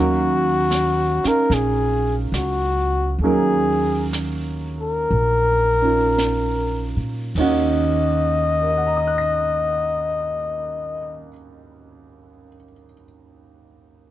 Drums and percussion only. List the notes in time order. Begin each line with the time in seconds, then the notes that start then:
0.71 snare, hi-hat pedal
1.24 snare
1.51 brush sweep, snare
2.34 snare, hi-hat pedal
3.21 brush sweep
4.13 snare, hi-hat pedal
5.11 brush sweep
6.18 snare, hi-hat pedal
7.36 kick, ride